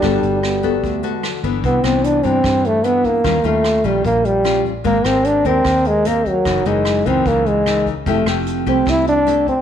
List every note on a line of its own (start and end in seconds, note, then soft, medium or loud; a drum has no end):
0.00 0.22 G1 medium
0.00 1.19 G3 medium
0.00 0.81 G3 medium
0.00 0.60 B3 medium
0.00 0.39 D4 loud
0.00 0.60 F#4 medium
0.00 0.60 A4 medium
0.00 kick medium
0.00 cross-stick medium
0.00 closed hi-hat soft
0.23 0.83 G1 medium
0.23 closed hi-hat soft
0.43 0.81 B3 medium
0.43 cross-stick medium
0.43 closed hi-hat soft
0.63 1.00 B3 medium
0.63 1.00 F#4 soft
0.63 1.01 A4 medium
0.63 kick soft
0.63 closed hi-hat soft
0.83 1.02 D2 medium
0.83 1.62 D3 soft
0.83 1.40 A3 medium
0.83 kick medium
0.83 closed hi-hat soft
1.03 1.40 B3 medium
1.03 1.40 F#4 medium
1.03 1.41 A4 medium
1.03 closed hi-hat soft
1.23 cross-stick medium
1.23 closed hi-hat soft
1.43 1.62 G1 medium
1.43 1.83 E3 medium
1.43 1.83 B3 medium
1.43 1.83 D4 medium
1.43 kick soft
1.43 closed hi-hat soft
1.64 1.82 C2 medium
1.64 2.42 C3 medium
1.64 1.86 B3 medium
1.64 kick soft
1.64 closed hi-hat soft
1.83 2.21 C2 medium
1.83 2.21 E3 medium
1.83 2.21 B3 medium
1.83 2.06 C4 medium
1.83 2.21 D4 medium
1.83 cross-stick medium
1.83 closed hi-hat soft
2.04 2.27 D4 medium
2.04 closed hi-hat soft
2.23 2.43 G2 medium
2.23 2.81 E3 medium
2.23 2.68 C4 medium
2.23 2.81 D4 medium
2.23 kick soft
2.23 closed hi-hat soft
2.44 3.22 G2 soft
2.44 3.20 G2 medium
2.44 kick medium
2.44 cross-stick medium
2.44 closed hi-hat soft
2.64 2.87 A3 medium
2.64 closed hi-hat soft
2.84 3.23 E3 medium
2.84 3.23 B3 soft
2.84 3.07 B3 medium
2.84 3.23 D4 medium
2.84 closed hi-hat soft
3.04 3.47 A#3 medium
3.04 kick soft
3.04 closed hi-hat soft
3.24 3.43 D#2 medium
3.24 4.03 D#3 medium
3.24 3.36 G3 medium
3.24 3.36 C#4 medium
3.24 3.36 F4 medium
3.24 kick medium
3.24 cross-stick medium
3.24 closed hi-hat soft
3.44 3.81 D#2 medium
3.44 3.81 G3 medium
3.44 3.87 A3 medium
3.44 3.81 C#4 medium
3.44 3.82 F4 medium
3.44 closed hi-hat soft
3.64 cross-stick medium
3.64 closed hi-hat soft
3.84 4.03 A#1 medium
3.84 4.41 G3 medium
3.84 4.05 G3 medium
3.84 4.42 C#4 medium
3.84 4.42 F4 medium
3.84 kick soft
3.84 closed hi-hat soft
4.04 4.81 A#1 medium
4.04 4.83 A#2 soft
4.04 4.27 A#3 medium
4.04 kick medium
4.04 closed hi-hat soft
4.25 4.65 G3 medium
4.25 closed hi-hat soft
4.44 4.72 G3 soft
4.44 4.72 C#4 medium
4.44 4.72 F4 medium
4.44 cross-stick medium
4.44 closed hi-hat soft
4.65 kick soft
4.65 closed hi-hat soft
4.84 5.03 G#1 medium
4.84 5.63 G#3 medium
4.84 5.08 A#3 medium
4.84 4.97 C4 soft
4.84 4.97 G4 medium
4.84 4.97 A#4 medium
4.84 kick medium
4.84 closed hi-hat soft
5.04 5.42 G#1 medium
5.04 5.42 C4 medium
5.04 5.28 C4 medium
5.04 5.42 G4 medium
5.04 5.42 A#4 medium
5.04 cross-stick medium
5.04 closed hi-hat soft
5.24 5.48 D4 medium
5.24 closed hi-hat soft
5.45 5.64 D#2 medium
5.45 6.02 C4 medium
5.45 5.89 C4 medium
5.45 6.02 G4 medium
5.45 6.03 A#4 medium
5.45 kick soft
5.45 closed hi-hat soft
5.64 6.41 D#2 medium
5.64 6.43 D#3 soft
5.64 kick medium
5.64 cross-stick medium
5.64 closed hi-hat soft
5.85 6.09 G#3 medium
5.85 closed hi-hat soft
6.05 6.30 A#3 medium
6.05 6.33 C4 medium
6.05 6.33 G4 soft
6.05 6.33 A#4 medium
6.05 closed hi-hat soft
6.25 6.68 F#3 medium
6.25 kick soft
6.25 closed hi-hat soft
6.45 6.64 F#1 medium
6.45 7.24 F#2 medium
6.45 6.63 E3 medium
6.45 6.63 A#3 medium
6.45 6.63 D#4 medium
6.45 kick medium
6.45 cross-stick medium
6.45 closed hi-hat soft
6.65 7.03 F#1 medium
6.65 7.03 E3 medium
6.65 7.09 G#3 medium
6.65 7.03 A#3 medium
6.65 7.03 D#4 medium
6.65 closed hi-hat soft
6.85 cross-stick medium
6.85 closed hi-hat soft
7.06 7.25 C#2 medium
7.06 7.63 E3 medium
7.06 7.63 A#3 medium
7.06 7.29 C4 medium
7.06 7.63 D#4 medium
7.06 kick soft
7.06 closed hi-hat soft
7.25 8.02 C#2 medium
7.25 8.05 C#3 soft
7.25 7.49 A#3 medium
7.25 kick medium
7.25 closed hi-hat soft
7.46 7.87 G#3 medium
7.46 closed hi-hat soft
7.66 7.93 E3 soft
7.66 7.93 A#3 soft
7.66 7.93 D#4 medium
7.66 cross-stick medium
7.66 closed hi-hat soft
7.86 kick soft
7.86 closed hi-hat soft
8.06 8.25 F1 medium
8.06 8.85 F3 medium
8.06 8.23 A3 medium
8.06 8.26 A3 medium
8.06 9.62 C4 medium
8.06 8.23 E4 medium
8.06 8.24 G4 medium
8.06 kick medium
8.06 closed hi-hat soft
8.25 8.63 F1 medium
8.25 8.63 A3 medium
8.25 8.64 E4 medium
8.25 8.64 G4 medium
8.25 cross-stick medium
8.25 closed hi-hat soft
8.46 closed hi-hat soft
8.66 8.85 C2 medium
8.66 9.24 A3 medium
8.66 8.91 C4 medium
8.66 9.23 E4 medium
8.66 9.24 G4 medium
8.66 kick soft
8.66 closed hi-hat soft
8.86 9.62 C2 medium
8.86 9.62 C3 medium
8.86 9.08 E4 medium
8.86 kick medium
8.86 cross-stick medium
8.86 closed hi-hat soft
9.07 9.45 D4 medium
9.07 closed hi-hat soft
9.27 9.54 A3 medium
9.27 9.54 E4 soft
9.27 9.54 G4 medium
9.27 closed hi-hat soft
9.47 9.62 C4 medium
9.47 kick soft
9.47 closed hi-hat soft